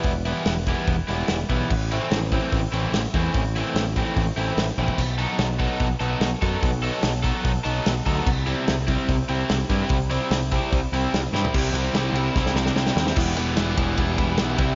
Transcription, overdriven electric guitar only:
X:1
M:4/4
L:1/8
Q:1/4=146
K:Em
V:1 name="Overdriven electric guitar"
[E,G,B,E] [E,G,B,E] z [E,G,B,E] z [E,G,B,E] z [E,G,B,E] | z [E,A,CE] z [E,A,CE] z [E,A,CE] z [E,A,CE] | z [E,A,CE] z [E,A,CE] z [E,A,CE] z [E,A,CE] | z [F,B,^DA] z [F,B,DA] z [F,B,DA] z [F,B,DA] |
z [F,B,^DA] z [F,B,DA] z [F,B,DA] z [F,B,DA] | z [C,G,CE] z [C,G,CE] z [C,G,CE] z [C,G,CE] | z [C,G,CE] z [C,G,CE] z [C,G,CE] z [C,G,CE] | [C,G,CE] [G,CE] [C,G,CE] [G,CE] [C,G,CE] [G,CE] [C,G,CE] [G,CE] |
[E,G,B,E] [E,G,B,E] [E,G,B,E] [E,G,B,E] [E,G,B,E] [E,G,B,E] [E,G,B,E] [C,G,CE] |]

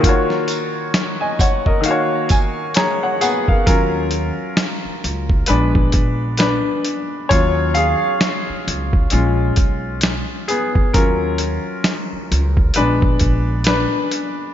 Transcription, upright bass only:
X:1
M:4/4
L:1/16
Q:"Swing 16ths" 1/4=66
K:Ebm
V:1 name="Upright bass" clef=bass
z16 | E,,3 z3 D,,2 B,,,2 B,,,3 z3 | E,,3 z3 D,,2 B,,,2 C,,3 z3 | E,,3 z3 D,,2 B,,,2 B,,,3 z3 |]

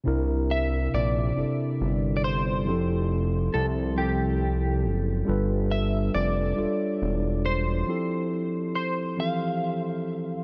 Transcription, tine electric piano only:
X:1
M:6/8
L:1/8
Q:3/8=46
K:F
V:1 name="Tine electric piano"
[C,CDEB]3 [C,CDEA]3 | [F,CEGA]3 [F,CEGA]3 | [G,DFA=B]3 [G,DFA_d=d]3 | [F,CEGA]3 [E,F,CGA]3 |]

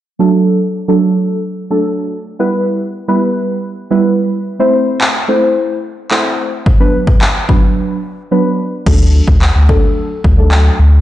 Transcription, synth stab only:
X:1
M:4/4
L:1/16
Q:1/4=109
K:Dmix
V:1 name="Synth stab"
z [F,A,DA]3 z2 [F,A,DA]4 z2 [F,A,DA]3 z | z [G,B,EB]3 z2 [G,B,EB]4 z2 [G,B,EB]3 z | z [A,CEc]3 z2 [A,CEc]4 z2 [A,CEc]3 z | z [F,B,DB]3 z2 [F,B,DB]4 z2 [F,B,DB]3 z |
[F,A,DA]4 z2 [F,A,DA]3 z2 [F,A,DA]3 z2 |]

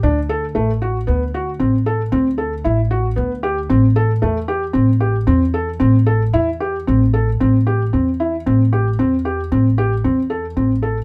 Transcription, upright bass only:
X:1
M:7/4
L:1/8
Q:1/4=114
K:Ador
V:1 name="Upright bass" clef=bass
D,,2 A,,,2 D,,2 A,,,2 D,,2 A,,,2 D,,2 | A,,,2 E,,2 A,,,2 E,,2 A,,,2 E,,2 A,,,2 | [K:Am] A,,,2 E,,2 A,,,2 E,,2 A,,,2 E,,2 A,,,2 |]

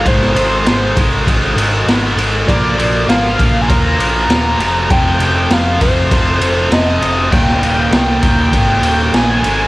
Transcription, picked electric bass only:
X:1
M:4/4
L:1/8
Q:1/4=99
K:Eb
V:1 name="Picked electric bass" clef=bass
A,,, A,,, A,,, A,,, A,,, A,,, A,,, A,,, | B,,, B,,, A,,, B,,, E,, B,,, E,,, F,,, | F,,, F,,, F,,, F,,, F,,, F,,, F,,, F,,, | E,,, E,,, C,, E,,, A,,, E,,, B,,, A,,, |]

